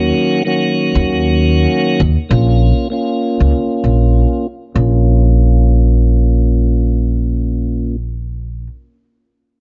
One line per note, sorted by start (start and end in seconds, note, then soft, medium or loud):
0.00 0.11 D#2 loud
0.00 0.42 D#3 medium
0.00 0.42 F#3 medium
0.00 0.43 A#3 medium
0.00 0.43 C#4 medium
0.00 0.43 F#4 loud
0.45 2.01 D#3 medium
0.45 2.01 F#3 medium
0.45 2.02 A#3 medium
0.45 2.02 C#4 medium
0.45 2.02 F#4 loud
0.95 1.66 D#2 loud
2.00 2.15 D#2 loud
2.29 2.70 A#1 loud
2.29 2.87 A#3 medium
2.29 2.88 C#4 medium
2.29 2.88 F4 loud
2.90 4.46 A#3 medium
2.90 4.47 C#4 medium
2.90 4.48 F4 loud
3.40 3.51 C#2 medium
3.84 4.24 A#1 medium
4.75 8.66 A#1 loud
4.75 7.96 A#3 medium
4.75 7.96 C#4 medium
4.75 7.96 F4 medium